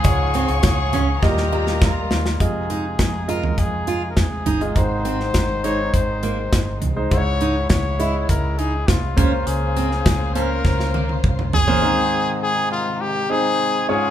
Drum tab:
HH |x-xxx-x---------|x-x-x-x-x-x-x-xx|x-x-x-x-x-x-x-x-|x-x-x-x-x-x-x-x-|
SD |----o---oo-oo-oo|----o-------o---|---oo-------o---|----o-------o---|
T1 |----------------|----------------|----------------|----------------|
T2 |----------------|----------------|----------------|----------------|
FT |------o---------|-------o------o-|--------------o-|--------------o-|
BD |o---o---o---o---|o---o---o---o---|o---o---o---o---|o---o---o---o-o-|

HH |x-x-x-x---------|----------------|
SD |---oo---oo------|----------------|
T1 |----------oo----|----------------|
T2 |-------------o--|----------------|
FT |--------------oo|----------------|
BD |----o---o---o---|----------------|